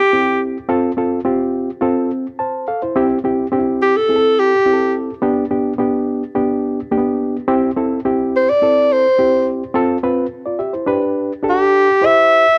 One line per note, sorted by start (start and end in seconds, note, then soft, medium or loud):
0.00 0.41 G4 medium
0.13 0.57 C4 medium
0.13 0.57 E4 medium
0.13 0.57 G4 medium
0.69 0.91 C4 loud
0.69 0.91 F4 medium
0.69 0.91 A4 loud
0.97 1.19 C4 medium
0.97 1.19 F4 medium
0.97 1.20 A4 medium
1.25 1.69 C4 medium
1.25 1.69 F4 medium
1.25 1.70 G4 medium
1.81 2.26 C4 medium
1.81 2.10 F4 medium
1.81 2.10 A4 medium
2.39 2.66 C5 medium
2.39 2.66 A5 medium
2.68 2.81 A4 medium
2.68 2.81 F5 medium
2.82 2.95 E4 soft
2.82 3.09 C5 medium
2.96 3.18 C4 loud
2.96 3.18 E4 medium
2.96 3.18 G4 loud
3.24 3.46 C4 medium
3.24 3.46 E4 medium
3.24 3.46 G4 medium
3.52 3.96 C4 medium
3.52 3.59 D4 medium
3.52 3.96 G4 medium
3.59 3.99 E4 medium
3.82 3.98 G4 medium
3.97 4.41 A4 medium
4.09 4.53 C4 medium
4.09 4.53 E4 medium
4.09 4.16 G#4 medium
4.16 4.56 A4 medium
4.39 4.95 G4 medium
4.66 5.09 C4 medium
4.66 5.10 E4 medium
4.66 4.72 G4 medium
4.73 5.13 A4 medium
5.22 5.44 B3 loud
5.22 5.44 D4 loud
5.22 5.44 G4 loud
5.51 5.72 B3 medium
5.51 5.73 D4 medium
5.51 5.73 G4 medium
5.78 6.22 B3 medium
5.78 6.23 D4 medium
5.78 6.23 G4 medium
6.35 6.79 B3 medium
6.35 6.79 D4 medium
6.35 6.79 G4 medium
6.91 6.98 A#3 medium
6.91 7.36 D4 medium
6.91 7.36 G4 medium
6.98 7.39 B3 medium
7.48 7.70 C4 loud
7.48 7.70 E4 medium
7.48 7.70 G4 loud
7.76 7.99 C4 medium
7.76 7.99 E4 medium
7.76 7.99 A4 medium
8.05 8.49 C4 medium
8.05 8.49 E4 medium
8.05 8.49 G4 loud
8.36 8.51 C5 medium
8.49 8.94 D5 medium
8.62 9.06 C4 medium
8.62 9.06 E4 medium
8.62 9.06 A4 medium
8.93 9.48 C5 medium
9.18 9.63 C4 medium
9.18 9.63 E4 medium
9.18 9.63 G4 medium
9.74 9.97 C4 loud
9.74 9.97 F4 medium
9.74 9.97 A4 loud
10.03 10.26 C4 medium
10.03 10.26 F4 medium
10.03 10.26 B4 medium
10.46 10.60 F4 soft
10.46 10.59 D5 medium
10.59 10.73 G4 medium
10.59 10.73 E5 medium
10.73 11.01 E4 soft
10.73 11.01 C5 medium
10.86 11.31 D4 medium
10.86 11.32 G4 medium
10.86 11.32 B4 medium
11.43 11.88 D4 medium
11.43 11.88 G4 medium
11.43 11.89 A4 medium
11.50 12.07 G4 medium
12.01 12.46 E4 medium
12.01 12.46 G4 medium
12.01 12.46 C5 medium
12.06 12.58 E5 loud